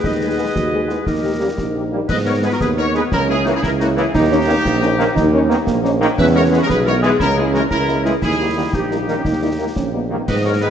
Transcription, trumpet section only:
0.04 D#5
2.09 D#5
2.26 C#5
2.44 B4
2.52 A#4
2.61 B4
2.77 C#5
2.95 B4
3.12 A#4
3.30 G#4
3.46 F#4
3.55 G#4
3.63 A#4
3.80 F#4
3.97 G#4
4.15 G4
6.18 E5
6.35 C#5
6.53 B4
6.62 A#4
6.70 B4
6.87 C#5
7.03 B4
7.21 A#4
7.38 G#4
7.55 A#4
7.70 A#4
8.05 G#4
8.23 G#4
8.73 G4
10.27 D#5
10.44 C#5
10.61 B4

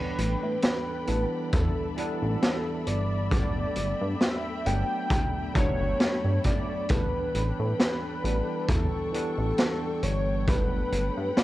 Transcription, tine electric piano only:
Already playing: E3 G3 B3 D4
1.07 E3 G3 B3 D4
1.96 E3 G3 B3 D4
3.30 F#3 A3 B3 D4
4.65 F#3 A3 B3 D4
5.54 F#3 A3 B3 D4
6.88 E3 G3 B3 D4
8.23 E3 G3 B3 D4
9.12 E3 G3 B3 D4
10.47 F#3 A3 B3 D4

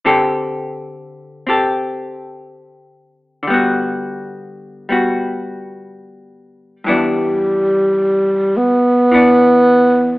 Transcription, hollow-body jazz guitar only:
0.05 D3 C4 G4 A4
1.47 C4 G4 A4
3.43 D3
3.47 G3 B3
3.54 F#4
4.89 G3 B3 F#4
6.84 G2 E3 B3
6.89 D4
9.12 E3 B3 D4

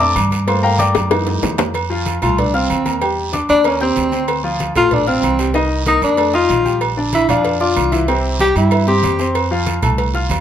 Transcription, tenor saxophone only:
2.23 F4
2.39 D4
2.55 C4
3.50 D4
3.67 C#4
3.83 C4
4.77 F4
4.94 D4
5.08 C4
5.88 D#4
6.04 D4
6.35 F4
7.15 E4
7.30 D4
7.61 F4
8.41 G4
8.57 E4
8.88 G4

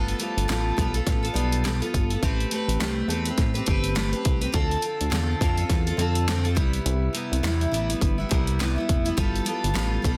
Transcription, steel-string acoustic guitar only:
Already playing: G3 B3 F4 A4
0.19 G3 B3 F4 A4
0.48 G3 B3 F4 A4
0.77 G3 B3 F4
0.81 A4
0.94 F4 A4
0.99 B3
1.23 F4 A4
1.27 B3
1.34 G3 B3 F4 A4
1.64 G3 B3 F4 A4
1.80 B3 F4 A4
2.10 F4 A4
2.14 B3
2.23 A3 C4 G4 B4
2.51 A3 C4 G4 B4
2.80 A3 C4 G4 B4
3.09 A3 C4 G4 B4
3.27 C4 G4 B4
3.54 G4 B4
3.58 C4
3.66 A3 C4 G4
3.70 B4
3.95 A3 C4 G4 B4
4.12 G4 B4
4.16 C4
4.41 G4 B4
4.45 C4
4.52 D3 C4 F4 A4
4.81 D3 C4 F4
4.85 A4
5.10 D3 C4 F4 A4
5.41 D3 C4 F4
5.45 A4
5.58 F4 A4
5.62 C4
5.87 F4 A4
5.91 C4
5.97 D3 C4 F4
6.01 A4
6.28 D3 C4 F4 A4
6.44 C4 F4 A4
6.55 C3 G3 B3 E4
7.13 C3 G3 B3
7.17 E4
7.43 C3 G3 B3 E4
7.72 C3 G3 B3
7.76 E4
7.89 B3 E4
7.94 G3
8.18 G3 B3 E4
8.29 C3 G3 B3
8.33 E4
8.59 C3 G3 B3 E4
8.76 B3 E4
8.80 G3
9.05 G3 B3 E4
9.17 G3 B3 F4 A4
9.45 G3 B3 F4
9.49 A4
9.74 G3 B3 F4 A4
10.02 G3 B3 F4
10.06 A4

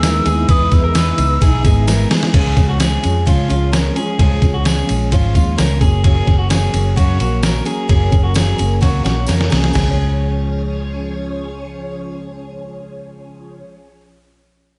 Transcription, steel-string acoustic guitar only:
0.03 E3 G#3 B3 D#4
0.25 G#3 B3 D#4
0.48 E3 G#3 B3 D#4
0.71 G#3 B3 D#4
0.94 E3 G#3 B3 D#4
1.17 G#3 B3 D#4
1.40 E3 G#3 B3 D#4
1.63 G#3 B3 D#4
1.88 E3 G#3 B3 D#4
2.10 G#3 B3 D#4
2.34 C#3 F3 G#3 C#4
2.56 F3 G#3 C#4
2.79 C#3 F3 G#3 C#4
3.03 F3 G#3 C#4
3.25 C#3 F3 G#3 C#4
3.48 F3 G#3 C#4
3.72 C#3 F3 G#3 C#4
3.96 F3 G#3 C#4
4.19 C#3 F3 G#3 C#4
4.42 F3 G#3 C#4
4.64 C#3 F3 G#3 C#4
4.87 F3 G#3 C#4
5.11 C#3 F3 G#3 C#4
5.34 F3 G#3 C#4
5.56 C#3 F3 G#3 C#4
5.81 F#3 A#3 C#4
6.04 F#2 C#3 F#3 A#3 C#4
6.26 F#3 A#3 C#4
6.49 C#3 F#3 A#3 C#4
6.72 F#3 A#3 C#4
6.96 F#2 C#3 F#3 A#3 C#4
7.19 F#3 A#3 C#4
7.43 C#3 F#3 A#3 C#4
7.65 F#3 A#3 C#4
7.88 F#2 C#3 F#3 A#3 C#4
8.11 F#3 A#3 C#4
8.34 C#3 F#3 A#3 C#4
8.58 F#3 A#3 C#4
8.81 F#2 C#3 F#3 A#3 C#4
9.04 F#3 A#3 C#4
9.27 C#3 F#3 A#3 C#4
9.50 F#3 A#3 C#4
9.68 C#3
9.76 F3
9.83 G#3
9.89 C#4

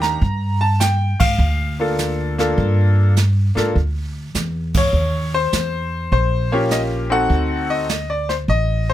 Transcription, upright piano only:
Already playing: A#3 D4 D#4 G4
0.02 A#5
0.61 A5
0.80 G5
1.20 F5
1.80 A#3 D4 F4 A4
2.38 A#3 D4 F4 A4
3.55 A#3 D4 F4 A4
4.77 C#5
5.34 C5
6.13 C5
6.52 A#3 C#4 F4 G4 C#5
6.72 D#5
7.10 C4 D#4 F#4 A4 F#5
7.70 D#5
8.10 D5
8.29 C5
8.49 D#5
8.90 C5

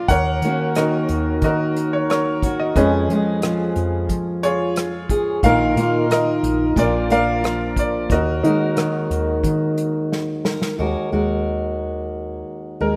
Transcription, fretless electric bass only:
0.08 D#2
0.42 D#3
1.09 D#2
1.42 D#3
2.75 F2
3.09 F3
3.76 F2
4.09 F3
5.43 A#1
5.76 A#2
6.43 A#1
6.76 A#1
8.10 D#2
8.44 D#3
9.10 D#2
9.43 D#3
10.79 D#2
11.12 D#2
12.81 D#2

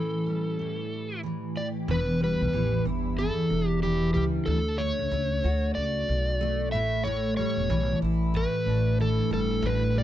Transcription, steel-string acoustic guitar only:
Already playing: A2 E3 C#4
0.26 G3
0.59 A2
1.23 E3
1.56 G4
1.88 E2
2.21 G3
2.54 E3
2.87 E4
3.18 E2
3.51 D4
3.83 E3
4.15 G3
4.79 A3
5.12 A3
5.44 F#4
6.41 A3
6.73 A2
7.05 A2
7.38 G3
7.70 E3
8.02 E4
8.34 A2
8.67 D4
9.00 E3
9.31 G3
9.63 A2
9.96 G3

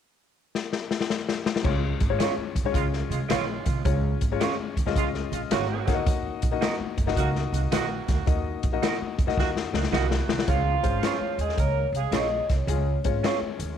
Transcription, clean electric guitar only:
2.19 G#3 C#4 F4 C#5
3.29 G#3 C#4 F4 C#5
4.40 G#3 C#4 F4 C#5
5.51 G#3 C#4 F4 C#5
6.61 D#4 F#4 A#4 D#5
7.72 D#4 F#4 A#4 D#5
8.83 D#4 F#4 A#4 D#5
9.92 D#4 F#4 A#4 D#5
11.03 C#4 F4 G#4 C#5
12.13 C#4 F4 G#4 C#5
13.24 C#4 F4 G#4 C#5

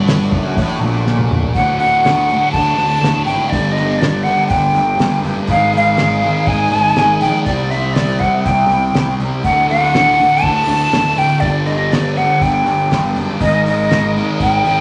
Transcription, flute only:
1.55 F#5
1.79 F#5
2.52 A5
3.25 G5
3.49 D5
3.72 D#5
3.98 D5
4.23 F#5
4.47 G5
5.50 F5
5.77 F5
6.48 G#5
7.21 G5
7.45 D5
7.70 E5
7.93 D5
8.19 F#5
8.44 G5
9.43 F#5
9.70 F#5
10.43 A5
11.18 G5
11.40 D5
11.66 D#5
11.91 D5
12.17 F#5
12.42 G5
13.41 D#5
13.66 D#5
14.42 G5

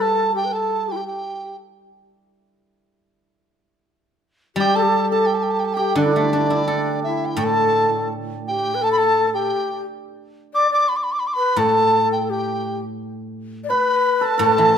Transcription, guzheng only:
Already playing: G3
4.56 G3
5.96 D3
6.16 A3
6.33 D4
6.50 E4
6.68 A4
7.37 A2
11.56 A2
14.39 A2
14.58 E3

